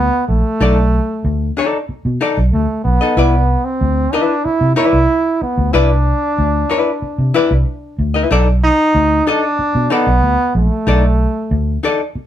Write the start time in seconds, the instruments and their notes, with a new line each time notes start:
Already playing: trombone B3
0.28 fingered electric bass A#1, trombone A3
0.61 fingered electric bass B1, hollow-body jazz guitar D#4 A4 D5
1.24 fingered electric bass D2
1.57 hollow-body jazz guitar D#4 A4 D5
1.89 muted fingered electric bass stroke
2.05 fingered electric bass B2
2.21 hollow-body jazz guitar D#4 A4 D5
2.37 fingered electric bass B1
2.53 fingered electric bass D2, trombone A3
2.84 fingered electric bass B1, trombone B3
3.01 hollow-body jazz guitar D#4 A4 D#5
3.17 fingered electric bass C2, hollow-body jazz guitar E4 B4 D5
3.65 trombone C4
3.81 fingered electric bass D2
4.13 trombone D4, hollow-body jazz guitar E4 B4 E5
4.45 trombone E4, muted fingered electric bass stroke
4.61 fingered electric bass C3
4.76 hollow-body jazz guitar E4 B4 D5, trombone E4
4.93 fingered electric bass C2
5.42 trombone B3, muted fingered electric bass stroke
5.58 fingered electric bass D2
5.73 fingered electric bass C2, trombone D4, hollow-body jazz guitar E4 B4 D5
6.38 fingered electric bass D2
6.70 hollow-body jazz guitar E4 B4 D5
7.02 muted fingered electric bass stroke
7.18 fingered electric bass C3
7.34 hollow-body jazz guitar E4 B4 D5
7.51 fingered electric bass C2
7.99 fingered electric bass D2
8.14 hollow-body jazz guitar E4 B4 E5
8.31 fingered electric bass B1, hollow-body jazz guitar D#4 A4 D5
8.64 trombone D#4
8.95 fingered electric bass D2
9.27 trombone D4, hollow-body jazz guitar D#4 A4 D#5
9.59 muted fingered electric bass stroke
9.75 fingered electric bass B2
9.90 trombone B3, hollow-body jazz guitar D#4 A4 D5
10.07 fingered electric bass B1
10.23 fingered electric bass D2
10.55 fingered electric bass A#1, trombone A3
10.87 fingered electric bass B1, hollow-body jazz guitar D#4 A4 D5
11.51 fingered electric bass D2
11.83 hollow-body jazz guitar D#4 A4 D5
12.15 muted fingered electric bass stroke